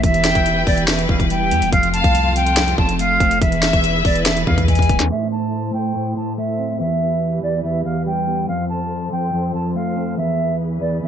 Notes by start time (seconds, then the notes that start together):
0.03 E1 E2 E3 E4 G4 B4 E5, kick, closed hi-hat
0.14 closed hi-hat
0.25 G5, snare, closed hi-hat
0.35 E1, kick, closed hi-hat
0.46 closed hi-hat
0.67 E1 E2 D5, kick, open hi-hat
0.78 closed hi-hat
0.88 E5, snare, closed hi-hat
0.99 closed hi-hat
1.09 E1 E2 F5, kick
1.20 kick, closed hi-hat
1.30 G3 G5, closed hi-hat
1.51 E2 B3, closed hi-hat
1.62 E1, closed hi-hat
1.72 F1 F2 A3 C4 F4 F5, kick, closed hi-hat
1.83 closed hi-hat
1.93 F5 A5, closed hi-hat
2.04 C2, kick, closed hi-hat
2.15 closed hi-hat
2.36 F2 G5, closed hi-hat
2.47 closed hi-hat
2.57 F2, snare, closed hi-hat
2.68 closed hi-hat
2.78 F1 F2 A5, kick
2.89 closed hi-hat
2.99 A3 F5, closed hi-hat
3.20 F1 C4, kick, closed hi-hat
3.31 closed hi-hat
3.41 E1 E2 E3 E4 G#4 B4 E5, kick, closed hi-hat
3.52 closed hi-hat
3.63 E5, snare, closed hi-hat
3.73 E1, kick, closed hi-hat
3.84 closed hi-hat
4.05 E1 E2 D5, kick, open hi-hat
4.16 closed hi-hat
4.26 E2 E5, snare, closed hi-hat
4.37 closed hi-hat
4.47 E2 F5, kick
4.58 kick, closed hi-hat
4.68 G#3 G#5, kick, closed hi-hat
4.75 kick, closed hi-hat
4.82 closed hi-hat
4.89 D1 B3, kick, closed hi-hat
5.00 E2, snare, closed hi-hat
5.11 A2 A3 E4 C5 E5
5.32 A5
5.73 A2 G5
5.95 A2
6.16 A2 A5
6.38 A3 E5
6.59 C4
6.80 E2 E3 G4 B4 E5
7.43 E2 D5
7.64 E2 E5
7.85 F5
8.06 G3 G5
8.27 B3
8.48 F2 F3 A4 C5 F5
8.69 A5
9.12 F2 G5
9.33 F2
9.54 F2 A5
9.75 A3 F5
9.96 C4
10.17 E2 E3 G#4 B4 E5
10.81 E2 D5
11.02 E2 E5